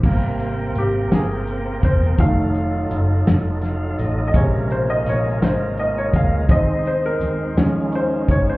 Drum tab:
CC |x-----|------|------|------|
HH |-xxxxx|xxxxxx|xxxxxx|xxxxxx|
SD |---o--|---oo-|--oo--|---o--|
BD |o----o|o-----|o----o|o----o|